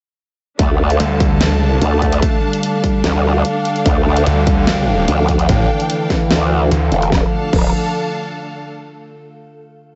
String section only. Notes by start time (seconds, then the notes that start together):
0.59 D4
0.69 F5
0.77 A4 A5
3.56 G5
7.12 D4
7.18 A4
7.25 F5
7.31 A5